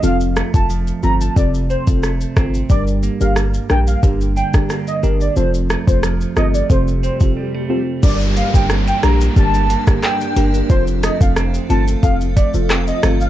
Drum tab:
CC |----------------|----------------|----------------|x---------------|
HH |----------------|----------------|----------------|--x---x---x---x-|
SH |xxxxxxxxxxxxxxxx|xxxxxxxxxxxxxxxx|xxxxxxxxxxxx----|xxxxxxxxxxxxxxxx|
CP |----------------|----------------|----------------|------------x---|
SD |--r---------r-r-|----r-r----rr---|--r-r-r---------|----r-r----rr---|
BD |---o----o--o--o-|o-------o--o----|---o----o--o----|o--o----o--o----|

CC |----------------|
HH |--x---x---x---x-|
SH |xxxxxxxxxxxxxxxx|
CP |------------x---|
SD |--r-r-------r-r-|
BD |o--o----o-o-----|